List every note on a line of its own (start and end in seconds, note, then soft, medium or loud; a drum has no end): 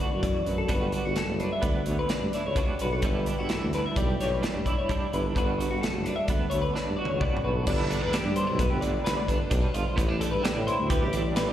0.00 0.22 D2 medium
0.00 0.66 A2 medium
0.00 1.16 D3 medium
0.00 0.68 B3 medium
0.00 0.69 D4 medium
0.00 0.68 F#4 medium
0.00 0.12 D5 medium
0.12 0.39 F#2 medium
0.12 0.23 C#5 medium
0.22 0.46 E2 medium
0.22 0.47 D5 medium
0.22 kick loud
0.22 closed hi-hat medium
0.46 0.69 F#2 medium
0.46 0.64 F#2 medium
0.46 0.58 B4 medium
0.46 closed hi-hat medium
0.58 0.70 A4 medium
0.68 0.96 G1 loud
0.68 1.86 G2 medium
0.68 1.61 B3 medium
0.68 1.40 D4 medium
0.68 0.92 F#4 medium
0.68 0.93 B4 medium
0.68 kick loud
0.68 closed hi-hat medium
0.92 2.33 F#4 medium
0.92 1.05 D5 medium
0.92 closed hi-hat medium
1.05 1.14 G1 medium
1.05 1.16 F#4 medium
1.16 1.40 A4 medium
1.16 snare loud
1.16 closed hi-hat medium
1.29 1.46 F#1 medium
1.40 2.10 D4 medium
1.40 1.51 B4 medium
1.40 closed hi-hat medium
1.53 1.63 E5 medium
1.62 1.81 D2 medium
1.62 2.57 B3 medium
1.62 1.87 D5 medium
1.62 kick loud
1.62 closed hi-hat medium
1.85 2.56 D2 medium
1.85 2.04 D2 medium
1.85 1.98 C#5 medium
1.85 closed hi-hat medium
1.99 2.10 B4 medium
2.09 2.57 D4 medium
2.09 2.33 D5 medium
2.09 snare loud
2.09 closed hi-hat medium
2.22 2.30 G2 medium
2.33 2.56 E4 medium
2.33 2.45 D5 medium
2.33 snare soft
2.33 closed hi-hat medium
2.46 2.72 C#2 medium
2.46 2.57 C#5 medium
2.56 3.03 G2 medium
2.56 3.04 B3 soft
2.56 3.05 D4 medium
2.56 2.80 F#4 medium
2.56 2.80 D5 medium
2.56 kick loud
2.56 closed hi-hat medium
2.79 2.98 B1 medium
2.79 3.01 F#4 medium
2.79 2.92 B4 medium
2.79 closed hi-hat medium
2.92 3.03 A4 medium
3.02 3.29 G1 loud
3.02 4.20 G2 medium
3.02 3.97 G3 medium
3.02 3.28 D4 medium
3.02 3.27 E4 medium
3.02 3.28 B4 medium
3.02 kick medium
3.02 closed hi-hat medium
3.26 3.40 D4 medium
3.26 3.38 D5 medium
3.26 closed hi-hat medium
3.39 3.48 G1 medium
3.39 4.64 E4 soft
3.39 3.52 F#4 medium
3.49 5.33 E3 medium
3.49 3.74 A4 medium
3.49 snare loud
3.49 closed hi-hat medium
3.61 3.79 D2 medium
3.73 4.42 D4 medium
3.73 3.85 B4 medium
3.73 snare soft
3.73 closed hi-hat medium
3.86 3.97 E5 medium
3.96 4.13 B1 medium
3.96 4.90 G3 medium
3.96 4.20 D5 medium
3.96 kick loud
3.96 closed hi-hat medium
4.20 4.37 B1 medium
4.20 4.88 G2 medium
4.20 4.33 C#5 medium
4.20 snare soft
4.20 closed hi-hat medium
4.33 4.44 B4 medium
4.43 4.90 D4 medium
4.43 4.66 D5 medium
4.43 snare medium
4.43 closed hi-hat medium
4.55 4.63 G2 medium
4.66 4.89 E4 medium
4.66 4.78 D5 medium
4.66 kick medium
4.66 closed hi-hat medium
4.79 4.90 C#5 medium
4.89 5.35 G2 medium
4.89 5.36 G3 medium
4.89 5.37 D4 soft
4.89 5.12 E4 medium
4.89 5.13 D5 medium
4.89 kick loud
4.89 closed hi-hat medium
5.13 5.30 G1 loud
5.13 5.33 E4 medium
5.13 5.26 B4 medium
5.13 closed hi-hat medium
5.26 5.36 A4 medium
5.35 5.62 G1 loud
5.35 6.51 G2 medium
5.35 6.29 B3 medium
5.35 6.04 D4 medium
5.35 5.57 F#4 medium
5.35 5.59 B4 medium
5.35 kick loud
5.35 closed hi-hat medium
5.58 6.97 F#4 medium
5.58 5.70 D5 medium
5.58 closed hi-hat medium
5.71 5.80 G1 medium
5.71 5.81 F#4 medium
5.81 6.04 A4 medium
5.81 snare loud
5.81 closed hi-hat medium
5.95 6.12 F#1 medium
6.04 6.74 D4 medium
6.04 6.16 B4 medium
6.04 closed hi-hat medium
6.16 6.26 E5 medium
6.26 6.46 D2 medium
6.26 7.20 B3 medium
6.26 6.49 D5 medium
6.26 kick loud
6.26 closed hi-hat medium
6.50 7.20 D2 medium
6.50 6.70 D2 medium
6.50 6.61 C#5 medium
6.50 closed hi-hat medium
6.62 6.74 B4 medium
6.74 7.21 D4 medium
6.74 6.95 D5 medium
6.74 snare medium
6.88 6.96 G2 medium
6.96 7.21 F#4 medium
6.96 7.08 D5 medium
7.05 7.20 C#5 medium
7.05 high tom medium
7.12 7.37 C#2 medium
7.20 7.68 G2 medium
7.20 7.65 B3 medium
7.20 7.65 D4 medium
7.20 7.43 F#4 medium
7.20 7.44 D5 medium
7.20 kick loud
7.20 mid tom medium
7.37 mid tom medium
7.44 7.63 B1 medium
7.44 7.65 F#4 medium
7.44 7.55 B4 medium
7.55 7.67 A4 medium
7.67 7.93 G1 loud
7.67 9.49 G2 medium
7.67 8.13 D3 medium
7.67 8.59 B3 medium
7.67 7.90 D4 medium
7.67 7.90 D5 loud
7.67 kick loud
7.67 crash loud
7.72 7.90 E4 medium
7.90 8.01 D4 medium
7.90 8.02 A4 medium
7.90 snare soft
7.90 closed hi-hat medium
8.01 8.12 E2 medium
8.01 8.33 E4 medium
8.01 8.14 B4 medium
8.13 10.42 D3 medium
8.13 8.34 D4 medium
8.13 8.37 G4 medium
8.13 snare loud
8.13 closed hi-hat medium
8.25 8.43 G2 loud
8.34 8.47 D4 medium
8.34 8.59 C5 medium
8.34 closed hi-hat medium
8.47 8.67 B1 medium
8.47 9.74 E4 soft
8.59 9.04 B3 medium
8.59 8.70 B4 medium
8.59 kick loud
8.59 closed hi-hat medium
8.70 8.98 G1 medium
8.70 8.82 G4 medium
8.81 9.52 D2 medium
8.81 9.29 D4 medium
8.81 9.04 D5 medium
8.81 closed hi-hat medium
9.04 9.15 G1 medium
9.04 9.95 B3 medium
9.04 9.16 B4 medium
9.04 snare loud
9.04 closed hi-hat medium
9.17 9.27 D5 medium
9.27 9.37 G1 medium
9.27 9.51 D4 medium
9.27 9.38 B4 medium
9.27 kick medium
9.27 closed hi-hat medium
9.38 9.61 A4 medium
9.50 9.61 B1 loud
9.50 9.96 G2 medium
9.50 9.96 D4 medium
9.50 kick loud
9.50 closed hi-hat loud
9.61 9.74 B4 medium
9.74 9.84 G1 medium
9.74 9.95 F4 medium
9.74 9.85 D5 medium
9.74 closed hi-hat medium
9.85 9.97 C5 medium
9.96 10.24 A1 loud
9.96 10.43 A2 medium
9.96 10.09 B3 medium
9.96 10.20 D5 medium
9.96 kick loud
9.96 closed hi-hat medium
10.09 10.19 D4 medium
10.20 10.33 D4 medium
10.20 10.31 A4 medium
10.20 closed hi-hat medium
10.31 10.41 G2 medium
10.31 10.66 E4 medium
10.31 10.43 B4 medium
10.43 11.53 D3 medium
10.43 11.14 D4 medium
10.43 10.67 G4 medium
10.43 snare loud
10.43 closed hi-hat loud
10.57 10.74 A2 loud
10.67 11.53 E4 medium
10.67 10.90 C5 medium
10.67 closed hi-hat medium
10.81 10.97 D2 medium
10.90 11.35 G3 medium
10.90 11.02 B4 medium
10.90 kick loud
10.90 closed hi-hat loud
11.03 11.28 A1 medium
11.03 11.14 G4 medium
11.13 11.53 E2 medium
11.13 11.53 D4 medium
11.13 11.36 D5 medium
11.13 closed hi-hat medium
11.36 11.46 A1 medium
11.36 11.53 G3 medium
11.36 11.49 B4 medium
11.36 snare loud
11.36 closed hi-hat medium
11.49 11.53 D5 medium